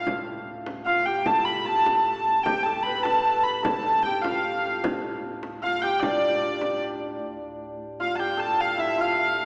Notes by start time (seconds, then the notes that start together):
Already playing: D2 A2 D4 F4 G4 A4
0.07 frame drum
0.66 frame drum
0.86 F4 F5
1.06 G4 G5
1.26 A4 A5, frame drum
1.45 B5
1.66 A5, frame drum
1.84 A4 A5, frame drum
2.43 D2 G4 G5, frame drum
2.47 A2
2.63 A4 A5
2.83 B4 B5
3.03 A4 A5, frame drum
3.43 B5
3.63 A4 A5, frame drum
4.03 G4 G5
4.22 F4 F5, frame drum
4.84 frame drum
5.43 frame drum
5.63 F4 F5
5.82 G4 G5
6.00 D4 D5, frame drum
6.22 frame drum
6.61 frame drum
7.20 D2 A2
8.00 F4 F5
8.16 G4 G5 A5
8.37 A4 A5
8.60 F5
8.78 E4 E5
8.98 F4 F5